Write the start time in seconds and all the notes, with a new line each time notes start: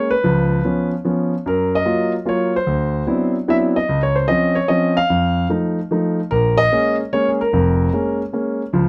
Already playing: G#3 A#3 C#4
0.11 B4
0.24 C#2 F3
0.64 F3 B3 C#4
1.05 F3 B3 C#4
1.46 F#2 A#4
1.75 D#5
1.85 F#3 A#3 F4
2.25 F#3 A#3 F4 C#5
2.56 C5
2.67 D2
3.07 F#3 B3 C4 D4 E4
3.48 F#3 B3 C4 D4 E4 E5
3.76 D#5
3.89 C#2
4.03 C#5
4.16 C5
4.28 F3 C4 C#4 D#5
4.55 C#5
4.68 F3 C4 C#4 D#5
4.97 F5
5.10 F2
5.49 F3 A3 D#4
5.91 F3 A3 D#4
6.31 A#1 A#4
6.58 D#5
6.72 G#3 A#3 C#4
7.13 G#3 A#3 C#4 C#5
7.29 G#4
7.41 A#4
7.53 F1 F2
7.93 G#3 A#3 C#4
8.33 G#3 A#3 C#4
8.73 C#2 F3